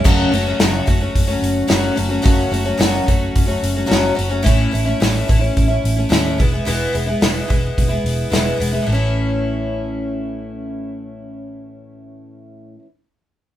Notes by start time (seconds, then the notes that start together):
0.04 F#1 F#2 C#3 F#3 A3 C#4 F#4, kick, crash
0.32 F#1 F#3 A3 C#4 F#4, open hi-hat
0.46 F#3 A3 C#4 F#4
0.60 F#1 F#2 C#3 F#3 A3 C#4 F#4, snare, open hi-hat
0.86 F#1 F#3 A3 C#4 F#4, kick, open hi-hat
1.00 F#3 A3 C#4 F#4
1.15 F#1, kick, open hi-hat
1.27 F#3 A3 C#4 F#4
1.42 F#1, open hi-hat
1.67 F#1 F#2 C#3 F#3 A3 C#4 F#4, snare, open hi-hat
1.95 F#1 F#3 A3 C#4 F#4, open hi-hat
2.09 F#3 A3 C#4 F#4
2.22 F#1 F#2 C#3 F#3 A3 C#4 F#4, kick, open hi-hat
2.51 F#1 F#3 A3 C#4 F#4, open hi-hat
2.65 F#3 A3 C#4 F#4
2.77 F#1 F#2 C#3 F#3 A3 C#4 F#4, snare, open hi-hat
3.06 F#1 F#3 A3 C#4 F#4, kick, open hi-hat
3.36 F#1, kick, open hi-hat
3.46 F#3 A3 C#4 F#4
3.63 F#1, open hi-hat
3.75 F#3 A3 C#4 F#4
3.86 F#2 C#3 F#3 A3 C#4 F#4
3.90 F#1, snare, open hi-hat
4.15 F#1 F#3 A3 C#4 F#4, open hi-hat
4.29 F#3 A3 C#4 F#4
4.43 A1 A2 E3 A3 C#4 E4, kick, open hi-hat
4.71 A1 E3 A3 C#4 E4, open hi-hat
4.85 A3 C#4 E4
5.00 A1 A2 E3 A3 C#4 E4, snare, open hi-hat
5.27 A1 E3 A3 C#4 E4, kick, open hi-hat
5.39 A3 C#4 E4
5.57 A1, kick, open hi-hat
5.68 A3 C#4 E4
5.84 A1, open hi-hat
5.96 A3 C#4 E4
6.09 D#2 A2 E3 A3 C#4 E4, snare, open hi-hat
6.38 E1 E3 G#3 B3 E4, kick, open hi-hat
6.51 E3 G#3 B3 E4
6.65 E1 E2 B2 E3 G#3 B3 E4, open hi-hat
6.92 E1 E3 G#3 B3 E4, open hi-hat
7.06 E3 G#3 B3 E4
7.21 E1 E2 B2 E3 G#3 B3 E4, snare, open hi-hat
7.48 E1 E3 G#3 B3 E4, kick, open hi-hat
7.78 E1, kick, open hi-hat
7.88 E3 G#3 B3 E4
8.04 E1, open hi-hat
8.30 E1 E2 B2 E3 G#3 B3 E4, snare, open hi-hat
8.58 E1 E3 G#3 B3 E4
8.62 open hi-hat
8.72 E3 G#3 B3 E4
8.82 A2
8.86 A1 E3 A3
8.92 C#4 E4